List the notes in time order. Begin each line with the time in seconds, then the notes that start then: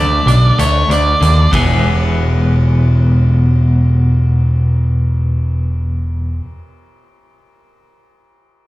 Already playing: D2 D3 A3 D4 D5
0.26 B1 D4, closed hi-hat
0.59 D2 A3 C#5, closed hi-hat
0.89 D2 D4 D5, closed hi-hat
1.21 D#2 D3, closed hi-hat
1.51 E1 E2 B2 E3 G#3 B3 G#4, kick, ride